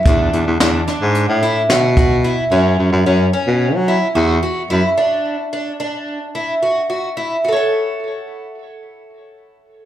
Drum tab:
HH |xxxxxxxxx|---------|---------|---------|
SD |--oo--o--|---------|---------|---------|
BD |o------o-|---------|---------|---------|